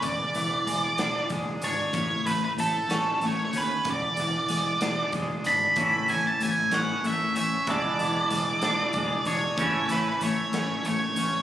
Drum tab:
HH |xxxxxx|xxxxxx|xxxxxx|xxxxxx|
SD |---o--|---o--|---o--|---o--|
BD |o---o-|o-----|o---o-|o-----|

HH |xxxxxx|xxxxxx|
SD |---o--|---o--|
BD |o---o-|o-----|